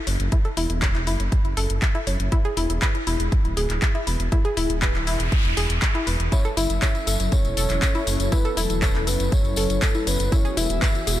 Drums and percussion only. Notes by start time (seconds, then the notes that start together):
0.07 open hi-hat
0.20 closed hi-hat
0.32 kick, closed hi-hat
0.45 closed hi-hat
0.57 open hi-hat
0.70 closed hi-hat
0.82 kick, clap, closed hi-hat
0.95 clap, closed hi-hat
1.07 open hi-hat
1.20 closed hi-hat
1.32 kick, closed hi-hat
1.45 closed hi-hat
1.57 open hi-hat
1.70 closed hi-hat
1.82 kick, clap, closed hi-hat
1.95 closed hi-hat
2.07 open hi-hat
2.20 closed hi-hat
2.32 kick, closed hi-hat
2.45 closed hi-hat
2.57 open hi-hat
2.70 closed hi-hat
2.82 kick, clap, closed hi-hat
2.95 closed hi-hat
3.07 open hi-hat
3.20 closed hi-hat
3.32 kick, closed hi-hat
3.45 closed hi-hat
3.57 open hi-hat
3.70 clap, closed hi-hat
3.82 kick, clap, closed hi-hat
3.95 closed hi-hat
4.07 open hi-hat
4.20 closed hi-hat
4.32 kick, closed hi-hat
4.45 closed hi-hat
4.57 open hi-hat
4.70 closed hi-hat
4.82 kick, clap, closed hi-hat
4.95 clap, closed hi-hat
5.07 open hi-hat
5.20 closed hi-hat
5.32 kick, closed hi-hat
5.45 closed hi-hat
5.57 open hi-hat
5.70 closed hi-hat
5.82 kick, clap, closed hi-hat
5.95 closed hi-hat
6.07 open hi-hat
6.20 closed hi-hat
6.32 kick, closed hi-hat, tambourine
6.45 closed hi-hat, tambourine
6.57 open hi-hat, tambourine
6.70 closed hi-hat, tambourine
6.82 kick, clap, closed hi-hat, tambourine
6.95 closed hi-hat, tambourine
7.07 open hi-hat, tambourine
7.20 closed hi-hat, tambourine
7.32 kick, closed hi-hat, tambourine
7.45 closed hi-hat, tambourine
7.57 open hi-hat, tambourine
7.69 clap, closed hi-hat, tambourine
7.82 kick, clap, closed hi-hat, tambourine
7.95 closed hi-hat, tambourine
8.07 open hi-hat, tambourine
8.20 closed hi-hat, tambourine
8.32 kick, closed hi-hat, tambourine
8.45 closed hi-hat, tambourine
8.57 open hi-hat, tambourine
8.70 closed hi-hat, tambourine
8.82 kick, clap, closed hi-hat, tambourine
8.95 clap, closed hi-hat, tambourine
9.07 open hi-hat, tambourine
9.20 closed hi-hat, tambourine
9.32 kick, closed hi-hat, tambourine
9.45 closed hi-hat, tambourine
9.56 open hi-hat, tambourine
9.70 closed hi-hat, tambourine
9.82 kick, clap, closed hi-hat, tambourine
9.95 closed hi-hat, tambourine
10.07 open hi-hat, tambourine
10.20 closed hi-hat, tambourine
10.32 kick, closed hi-hat, tambourine
10.45 closed hi-hat, tambourine
10.57 open hi-hat, tambourine
10.69 closed hi-hat, tambourine
10.82 kick, clap, closed hi-hat, tambourine
10.95 closed hi-hat, tambourine
11.07 open hi-hat, tambourine